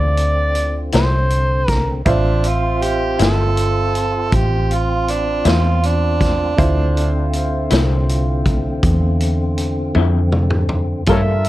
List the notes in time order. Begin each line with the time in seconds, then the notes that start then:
Already playing: D2 D3 C4 E4 F4 C5 D5
0.17 closed hi-hat
0.55 closed hi-hat
0.92 C2 D3 F3 C4 E4 C5, snare, closed hi-hat
1.30 closed hi-hat
1.68 A#4, kick, snare, closed hi-hat
2.06 A1 C4 D4 F4 C5 E5, kick, closed hi-hat
2.44 F4, closed hi-hat
2.82 G4, closed hi-hat
3.19 G1 D3 F3 C4 E4 A4, snare, closed hi-hat
3.57 closed hi-hat
3.95 closed hi-hat
4.32 A1 G4, kick, closed hi-hat
4.71 F4, closed hi-hat
5.08 D4, closed hi-hat
5.45 E2 D3 F3 C4 E4, snare, closed hi-hat
5.50 F4
5.83 D4, closed hi-hat
6.21 kick, snare, closed hi-hat
6.57 D2 D3 C4 E4 F4 C5, kick, closed hi-hat
6.97 closed hi-hat
7.33 closed hi-hat
7.71 C2 D3 F3 C4 E4, snare, closed hi-hat
8.09 closed hi-hat
8.46 kick, closed hi-hat
8.83 E2, kick, closed hi-hat
9.21 closed hi-hat
9.58 closed hi-hat
9.95 F2 D3 F3 C4 E4, high tom
10.32 mid tom
10.50 mid tom
10.69 floor tom
11.06 G2 G3 A#3 F4 A4 A#4, kick, closed hi-hat
11.12 A4 C#5 E5
11.45 closed hi-hat